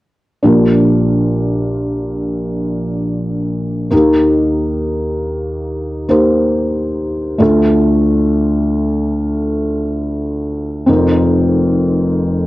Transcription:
0.43 A#1 A#2 D4 F4 G4 A#4
3.91 D#2 D#3 A#3 D#4 G4 A#4
6.09 A#3 D#4 G4 C5
7.38 D2 D3 A3 D4 F4 A4
10.86 F1 F2 C4 D#4 F4 A#4

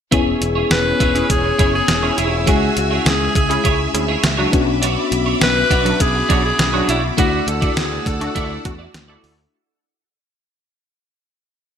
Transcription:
0.11 E1 B3 C#4 E4 G#4 C#5 G#5 E6, kick, closed hi-hat
0.41 E1, muted clean electric guitar stroke, closed hi-hat
0.55 E4 G#4 C#5
0.70 E1 B4, muted clean electric guitar stroke, snare, closed hi-hat
0.85 muted clean electric guitar stroke
1.00 E1 E4 G#4 C#5, kick, closed hi-hat
1.15 C#4 E4 G#4, muted clean electric guitar stroke, closed hi-hat
1.30 E1 G#4, kick, closed hi-hat
1.44 muted clean electric guitar stroke
1.58 F#1 C#4 E4 G#4 C#5, kick, closed hi-hat
1.74 G#4, muted clean electric guitar stroke
1.88 E1, muted clean electric guitar stroke, snare, closed hi-hat
2.02 C#4 E4 G#4 C#5
2.17 E1 E4 G#4 C#5, closed hi-hat
2.32 muted clean electric guitar stroke
2.46 C#2 G#3 C#4 E4 F#4 G#4 C#5 E5, kick, closed hi-hat
2.76 C#2 F#4, muted clean electric guitar stroke, closed hi-hat
2.91 E4 G#4 C#5
3.05 C#2 G#4, muted clean electric guitar stroke, snare, closed hi-hat
3.20 muted clean electric guitar stroke
3.35 C#2 G#4, kick, closed hi-hat
3.49 C#4 E4 G#4, muted clean electric guitar stroke, closed hi-hat
3.64 C#2 E4 G#4 C#5, kick, closed hi-hat
3.79 muted clean electric guitar stroke
3.94 D2 C#4 E4 G#4, muted clean electric guitar stroke, closed hi-hat
4.08 E4 G#4 C#5
4.23 C#2, muted clean electric guitar stroke, snare, closed hi-hat
4.37 F#3 D4 E4 F#4 G#4 C#5
4.52 B1 B3 C#4 D4 F#4 B5 D6, muted clean electric guitar stroke, kick, closed hi-hat
4.67 muted clean electric guitar stroke
4.82 D4 F#4 C#5, closed hi-hat
5.11 B1, muted clean electric guitar stroke, closed hi-hat
5.26 D4 F#4 C#5
5.40 B1 B4, muted clean electric guitar stroke, snare, closed hi-hat
5.56 muted clean electric guitar stroke
5.70 B1 D4 F#4 C#5, kick, closed hi-hat
5.85 F#3 D4 F#4, muted clean electric guitar stroke, closed hi-hat
6.00 B1 G#4, kick, closed hi-hat
6.15 muted clean electric guitar stroke
6.29 B1 F#3 D4 F#4 C#5, kick, closed hi-hat
6.44 G#4, muted clean electric guitar stroke
6.59 B1, muted clean electric guitar stroke, snare, closed hi-hat
6.73 F#3 D4 F#4 C#5
6.88 B1 D4 E4 F#4 C#5, closed hi-hat
7.03 muted clean electric guitar stroke
7.17 D2 A3 D4 E4 F#4 D5 F#5 E6, kick, closed hi-hat
7.47 D2 A4, muted clean electric guitar stroke, closed hi-hat
7.61 E4 F#4 D5, kick, closed hi-hat
7.76 D2 G#4, muted clean electric guitar stroke, snare, closed hi-hat
7.91 muted clean electric guitar stroke
8.06 D2 A4, kick, closed hi-hat
8.21 A3 D4 F#4, muted clean electric guitar stroke, closed hi-hat
8.35 D2 E4 F#4 D5, kick, closed hi-hat
8.50 muted clean electric guitar stroke
8.64 E2 A3 D4 F#4, muted clean electric guitar stroke, kick, closed hi-hat
8.79 E4 F#4 D5
8.93 D2, muted clean electric guitar stroke, snare, closed hi-hat
9.08 E4 F#4 A4 D5
9.23 D2, muted clean electric guitar stroke, open hi-hat
9.38 muted clean electric guitar stroke

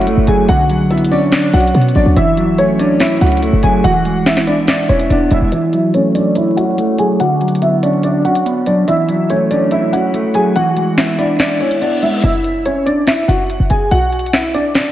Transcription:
Already playing: F#1 C#4 E4 F#4 F#5
0.01 closed hi-hat
0.07 A3, closed hi-hat
0.17 F#1
0.27 F#1 F#3 G#4 G#5, closed hi-hat
0.48 B1 D3 F#4 F#5, closed hi-hat
0.70 F#3, closed hi-hat
0.90 B3 E4 E5, closed hi-hat
0.98 closed hi-hat
1.05 closed hi-hat
1.11 C#4 D4 D5, open hi-hat
1.32 D4 D5, snare, closed hi-hat
1.43 B1
1.53 B1 C#4 F#4 F#5, closed hi-hat
1.61 closed hi-hat
1.68 closed hi-hat
1.75 B2 B3, closed hi-hat
1.82 closed hi-hat
1.89 closed hi-hat
1.95 A1 F#3 D4 D5, open hi-hat
2.06 D2
2.16 F#1 E3 E4 E5, closed hi-hat
2.37 F#3, closed hi-hat
2.58 A3 C#4 C#5, closed hi-hat
2.79 C#4 D4 D5, closed hi-hat
2.90 A1
3.00 E4 E5, snare, closed hi-hat
3.06 F#1
3.21 C#2 C#4 F#4 F#5, closed hi-hat
3.27 closed hi-hat
3.32 closed hi-hat
3.37 closed hi-hat
3.42 A3, closed hi-hat
3.53 F#1
3.63 F#1 F#3 G#4 G#5, closed hi-hat
3.84 E1 E3 F#4 F#5, closed hi-hat
4.05 G#3, closed hi-hat
4.26 B3 E4 E5, snare, closed hi-hat
4.37 snare, closed hi-hat
4.47 D4 E4 D5, closed hi-hat
4.68 D4 D5 E5, snare, closed hi-hat
4.89 E1 C#4 E4 C#5, closed hi-hat
5.00 closed hi-hat
5.10 E1 B3 D4 D5, closed hi-hat
5.31 E1 G#3 E4 E5, closed hi-hat
5.42 E1
5.52 E3 E4 E5, closed hi-hat
5.73 F#3, closed hi-hat
5.94 A3 C#4 C#5, closed hi-hat
6.15 C#4 D4 D5, closed hi-hat
6.35 E4 E5, closed hi-hat
6.57 C#4 F#4 F#5, closed hi-hat
6.78 A3, closed hi-hat
6.99 F#3 G#4 G#5, closed hi-hat
7.20 D3 F#4 F#5, closed hi-hat
7.41 F#3, closed hi-hat
7.48 closed hi-hat
7.55 closed hi-hat
7.62 B3 E4 E5, closed hi-hat
7.83 C#4 D4 D5, closed hi-hat
8.03 D4 D5, closed hi-hat
8.25 C#4 F#4 F#5, closed hi-hat
8.35 closed hi-hat
8.46 B3, closed hi-hat
8.66 F#3 D4 D5, closed hi-hat
8.88 E3 E4 E5, closed hi-hat
9.09 F#3, closed hi-hat
9.30 A3 C#4 C#5, closed hi-hat
9.50 C#4 D4 D5, closed hi-hat
9.71 E4 E5, closed hi-hat
9.93 C#4 F#4 F#5, closed hi-hat
10.14 A3, closed hi-hat
10.34 F#3 G#4 G#5, closed hi-hat
10.56 E3 F#4 F#5, closed hi-hat
10.77 G#3, closed hi-hat
10.97 B3 E4 E5, snare, closed hi-hat
11.08 closed hi-hat
11.18 D4 E4 D5, closed hi-hat
11.39 D4 D5 E5, snare, closed hi-hat, reverse cymbal
11.60 C#4 E4 C#5, closed hi-hat
11.71 closed hi-hat
11.81 B3 D4 D5, closed hi-hat
12.02 G#3 E4 E5, closed hi-hat
12.23 F#1 E4 E5, closed hi-hat
12.44 closed hi-hat
12.66 C#4 C#5, closed hi-hat
12.86 D4 D5, closed hi-hat
13.07 E4 E5, snare, closed hi-hat
13.28 F#1 F#4 F#5, closed hi-hat
13.50 closed hi-hat
13.60 F#1
13.70 F#1 G#4 G#5, closed hi-hat
13.91 B1 F#4 F#5, closed hi-hat
14.12 closed hi-hat
14.19 closed hi-hat
14.26 closed hi-hat
14.33 E4 E5, snare, closed hi-hat
14.54 D4 D5, closed hi-hat
14.75 D3 D4 D5, snare, closed hi-hat
14.86 B1

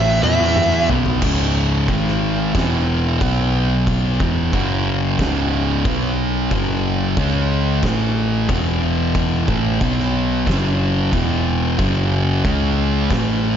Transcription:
Already playing: A1 A2 E3 A3 E5
0.23 E2 E3 B3 E4 E5, high tom
0.40 high tom
0.56 mid tom
0.89 B1 B2 F#3 B3, floor tom
1.06 floor tom
1.22 C#1 C#2 G#2 C#3, kick, crash
1.88 G#1 G#2 D#3 G#3, kick, crash
2.08 snare
2.55 E1 E2 B2 E3, kick, snare, crash
3.21 B1 B2 F#3 B3, kick, crash
3.87 kick, crash
4.20 E1 E2 B2 E3, kick
4.53 F#1 F#2 C#3 F#3, kick, crash
5.19 C#1 C#2 G#2 C#3, kick, snare, crash
5.85 B1 B2 F#3 B3, kick, crash
6.51 F#1 F#2 C#3 F#3, kick, crash
7.17 C#2 C#3 G#3 C#4, kick, crash
7.83 A1 A2 E3 A3, kick, snare, crash
8.49 E1 E2 B2 E3, kick, crash
9.15 kick, crash
9.48 A1 A2 E3 A3, kick
9.81 B1 B2 F#3 B3, kick, crash
10.00 snare
10.47 F#1 F#2 C#3 F#3, kick, snare, crash
11.12 E1 E2 B2 E3, kick, crash
11.79 F#1 F#2 C#3 F#3, kick, crash
12.45 C#2 C#3 G#3 C#4, kick, crash
13.10 A1 A2 E3 A3, kick, snare, crash

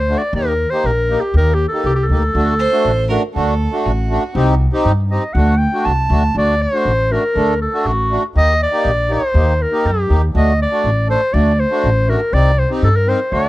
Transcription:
Already playing: D2 C5
0.09 A3 D4 F#4
0.18 D5
0.33 D#2 A#3 D#4 G4 A#4
0.70 A#3 D#4 G4 C5
0.84 A#1 A#4
1.09 A#3 D#4 G4
1.21 G4
1.34 D#2 A#3 D#4 G4 A#4
1.54 G4
1.68 A4
1.73 A#3 D#4 G4
1.84 C2 G4
1.89 A4
1.96 G4
2.04 A4
2.09 D2 A#3 D#4 G4
2.35 D2 A3 D4 F#4
2.59 C5
2.72 A3 D4 F#4
2.85 A1
3.09 A3 D4 F#4 A#4
3.34 D2 A3 D4 F#4 A4
3.72 A3 D4 F#4
3.86 A1 F#4
4.10 A3 D4 F#4
4.35 C2 C4 D#4 G4
4.73 C4 D#4 G4
4.85 G2
5.11 C4 D#4 G4 D#5
5.34 D2 A3 D4 F#4 F#5
5.58 G5
5.73 A3 D4 F#4
5.85 C2 A5
6.10 D2 A3 D4 F#4
6.35 D2 A3 D4 F#4 D5
6.62 C5
6.73 A3 D4 F#4
6.85 A1
7.10 A3 D4 F#4 A#4
7.35 D2 A3 D4 A4
7.62 A4
7.73 A3 D4 F#4
7.85 A1 F#4
8.11 A3 D4 F#4
8.35 D#2 A#3 D#4 G4 D#5
8.63 D5
8.72 A#3 D#4 G4
8.85 A#1
9.09 A#3 D#4 G4 C5
9.34 D#2 A#3 D#4 G4
9.62 A#4
9.71 A#3 D#4 G4
9.85 F#2 G4
10.08 D#2 A#3 D#4 G4
10.34 D2 A3 D4 F#4 D#5
10.62 D5
10.71 A3 D4 F#4
10.84 A1
11.08 A3 D4 A4 C5
11.33 D2 A3 D4 F#4 D5
11.60 C5
11.71 A3 D4 F#4
11.84 A1
12.07 A3 D4 F#4 A#4
12.33 C2 C4 D#4 G4 D5
12.59 C5
12.70 C4 D#4 G4
12.82 G2 A4
12.96 A#4
13.07 C4 D#4 A#4 C5
13.32 D2 A3 D4 F#4 D5

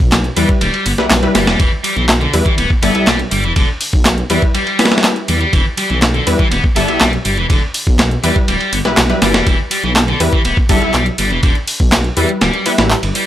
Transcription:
0.00 B1, kick
0.12 snare, clap, closed hi-hat, ride
0.24 closed hi-hat
0.37 E2 G3 E4 B4, open hi-hat, ride
0.49 kick, closed hi-hat
0.61 D1 G3, closed hi-hat, ride
0.74 ride
0.85 G1 B3, open hi-hat, ride
0.98 B1 G3 E4 B4, snare, closed hi-hat
1.10 B1, snare, clap, closed hi-hat, ride
1.23 G3 E4 B4, closed hi-hat
1.35 G1 G3 E4 B4, snare, open hi-hat, ride
1.47 E1 G3, snare, closed hi-hat, ride
1.59 E1 E3, kick, closed hi-hat, ride
1.84 G3, open hi-hat, ride
1.96 B1 E3, closed hi-hat
2.09 snare, clap, closed hi-hat, ride
2.21 D3, closed hi-hat
2.34 E2 G3 E4 B4, open hi-hat, ride
2.45 E3, kick, closed hi-hat
2.58 D1 B3, closed hi-hat, ride
2.70 kick
2.82 G1 G3 B3 E4 A4, open hi-hat, ride
2.95 B1 G3 E4 E5, closed hi-hat, ride
3.07 B1 G3, snare, clap, closed hi-hat, ride
3.19 closed hi-hat
3.31 G1 G3, open hi-hat, ride
3.44 E1 E3, closed hi-hat
3.56 E1 D3, kick, closed hi-hat, ride
3.81 open hi-hat
3.93 B1, kick
4.05 snare, clap, closed hi-hat, ride
4.18 closed hi-hat
4.30 E2 G3 E4 B4, open hi-hat, ride
4.42 kick, closed hi-hat
4.55 G3, closed hi-hat, ride
4.67 ride
4.79 G3 B3 E4 B4, snare, open hi-hat, ride
4.85 snare, ride
4.91 G3 E4 B4, snare, closed hi-hat, ride
4.98 snare, ride
5.04 snare, clap, closed hi-hat, ride
5.16 closed hi-hat
5.28 E2 G3, open hi-hat, ride
5.41 G3, closed hi-hat
5.53 E1 E3, kick, closed hi-hat, ride
5.78 G3, open hi-hat, ride
5.90 B1 E3, closed hi-hat
6.02 snare, clap, closed hi-hat, ride
6.14 D3, closed hi-hat
6.27 E2 G3 E4 B4, open hi-hat, ride
6.39 E3, kick, closed hi-hat
6.52 D1 B3, closed hi-hat, ride
6.64 kick
6.76 G1 G3 B3 E4 A4, open hi-hat, ride
6.88 B1 G3 E4 E5, closed hi-hat, ride
7.00 B1 G3, snare, clap, closed hi-hat, ride
7.13 closed hi-hat
7.25 G1 G3, open hi-hat, ride
7.37 E1 E3, closed hi-hat
7.50 E1 D3, kick, closed hi-hat, ride
7.74 open hi-hat
7.87 B1, kick, closed hi-hat
7.99 snare, clap, closed hi-hat, ride
8.11 closed hi-hat
8.23 E2 G3 E4 B4, open hi-hat, ride
8.36 kick, closed hi-hat
8.48 D1 G3, closed hi-hat, ride
8.61 ride
8.73 G1 B3, open hi-hat, ride
8.85 B1 G3 E4 B4, snare, closed hi-hat
8.97 B1, snare, clap, closed hi-hat, ride
9.09 G3 E4 B4, closed hi-hat
9.22 G1 G3 E4 B4, snare, open hi-hat, ride
9.34 E1 G3, snare, ride
9.47 E1 E3, kick, closed hi-hat, ride
9.71 G3, open hi-hat, ride
9.84 B1 E3, closed hi-hat
9.96 snare, clap, closed hi-hat, ride
10.08 D3, closed hi-hat
10.20 E2 G3 E4 B4, open hi-hat, ride
10.32 E3, kick, closed hi-hat
10.45 D1 B3, closed hi-hat, ride
10.57 kick
10.69 G1 G3 B3 E4 A4, kick, open hi-hat, ride
10.82 B1 G3 E4 E5, closed hi-hat
10.94 B1 G3, clap, closed hi-hat, ride
11.06 closed hi-hat
11.18 G1 G3, open hi-hat, ride
11.31 E1 E3, closed hi-hat
11.43 E1 D3, kick, closed hi-hat, ride
11.55 closed hi-hat
11.68 open hi-hat
11.80 B1, kick
11.92 snare, clap, closed hi-hat, ride
12.04 closed hi-hat
12.17 E2 G3 E4 B4, open hi-hat
12.29 closed hi-hat
12.41 D1 G3, snare, closed hi-hat, ride
12.53 closed hi-hat
12.66 G3 B3 E4 B4, open hi-hat, ride
12.78 A1 G3 E4 B4, snare, closed hi-hat, ride
12.90 clap, closed hi-hat
13.03 G1, closed hi-hat, ride
13.15 G3, open hi-hat, ride

